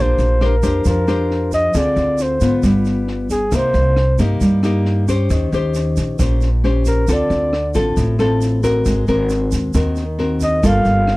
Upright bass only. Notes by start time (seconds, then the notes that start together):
Already playing: A#1
0.18 A#1
0.63 F2
0.86 F2
1.75 D2
1.96 D2
2.41 G#2
2.63 G1
3.52 C2
3.74 C2
4.19 G2
4.41 G2
5.30 D#2
5.52 D#2
5.97 A#1
6.19 A#1
7.08 D2
7.30 D2
7.75 A1
7.97 A1
8.86 G#1
9.08 G#1
9.52 D#2
9.74 D#2
10.63 G1
10.85 G1